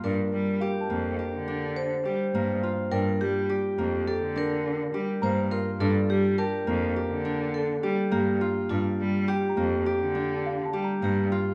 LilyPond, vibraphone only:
\new Staff \with { instrumentName = "Vibraphone" } { \time 5/4 \key g \minor \tempo 4 = 104 bes'2. c''2 | bes'8 g'4. a'8 bes'4. c''8 bes'8 | a'8 g'8 bes'2 a'4 g'4 | f'4 g'2. g'4 | }